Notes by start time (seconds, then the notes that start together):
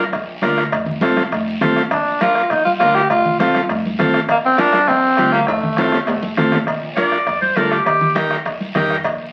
0.12 A#1, bombo low, bombo rim, cowbell, high conga, long guiro
0.42 D2 D4 F4 A#4, bombo rim, cowbell, high conga, low timbale, short guiro
0.58 bombo rim, short guiro
0.72 F1, bombo low, bombo rim, cowbell, high conga, long guiro
0.86 low conga
1.01 C4 F4 A4, bombo rim, cowbell, high conga, short guiro
1.16 bombo rim, high conga, short guiro
1.31 F1, bombo low, bombo rim, cowbell, high conga, long guiro
1.61 A1 C4 F4 A4, bombo rim, cowbell, high conga, low conga, low timbale, short guiro
1.76 bombo rim, short guiro
1.91 A#1 D4, bombo low, bombo rim, cowbell, high conga, long guiro
2.21 D4 F4 A#4, bombo rim, cowbell, high conga, short guiro
2.35 bombo rim, short guiro
2.50 A#1 D#4, bombo low, bombo rim, cowbell, high conga, long guiro
2.65 F4, high conga
2.80 D2 D4 F4 A#4, bombo rim, cowbell, high conga, low timbale, short guiro
2.95 G4, bombo rim, short guiro
3.10 F1 F4, bombo low, bombo rim, cowbell, high conga, long guiro
3.25 low conga
3.40 C4 F4 A4, bombo rim, cowbell, high conga, short guiro
3.55 bombo rim, high conga, short guiro
3.69 F1, bombo low, bombo rim, cowbell, high conga, long guiro
3.86 high conga
3.99 A1 C4 F4 A4, bombo low, bombo rim, cowbell, high conga, low conga, short guiro
4.14 bombo rim, short guiro
4.29 A#1 A#3, bombo low, bombo rim, cowbell, high conga, long guiro
4.46 C4
4.57 D4 F4 A#4, bombo rim, cowbell, high conga, short guiro
4.73 bombo rim, high conga, short guiro
4.88 A#1 C4, bombo low, bombo rim, cowbell, high conga, long guiro
5.17 D2 D4 F4 G4, bombo rim, cowbell, high conga, short guiro
5.32 A#3, bombo rim, short guiro
5.47 A3, bombo low, bombo rim, cowbell, high conga, high timbale, long guiro
5.63 low conga
5.77 C4 F4 A4, bombo rim, cowbell, high conga, high timbale, short guiro
5.92 bombo rim, low timbale, short guiro
6.07 F1, bombo low, bombo rim, cowbell, high conga, low timbale, long guiro
6.23 high conga
6.37 A1 C4 F4 A4, bombo low, bombo rim, cowbell, low conga, short guiro
6.52 bombo rim, low conga, low timbale, short guiro
6.67 A#1, bombo low, bombo rim, cowbell, high conga, long guiro
6.96 D4 F4 A#4 D5, bombo rim, cowbell, high conga, short guiro
7.12 bombo rim, short guiro
7.27 F2, bombo low, bombo rim, cowbell, high conga, long guiro
7.42 C5, high conga
7.56 D2 D4 F4 A4 A#4, bombo rim, cowbell, high conga, low timbale, short guiro
7.71 G4, bombo rim, short guiro
7.85 D#2 G4, bombo low, bombo rim, cowbell, high conga, long guiro
8.01 low conga
8.15 D#4 G4 A#4, bombo rim, cowbell, high conga, short guiro
8.31 bombo rim, short guiro
8.46 A#1, bombo low, bombo rim, cowbell, high conga, long guiro
8.60 high conga
8.75 F2 D#4 G4 A#4, bombo low, bombo rim, cowbell, high conga, low conga, low timbale, short guiro
8.90 bombo rim, short guiro
9.04 A#1, bombo low, bombo rim, cowbell, high conga, long guiro